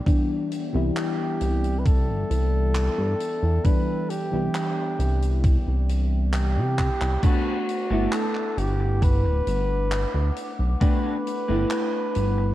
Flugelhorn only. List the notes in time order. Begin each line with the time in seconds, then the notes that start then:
0.96 G4
1.79 B4
1.86 A4
3.65 B4
4.10 G4
6.33 G4
7.23 F#4
8.13 A4
8.58 G4
9.03 B4
10.82 B4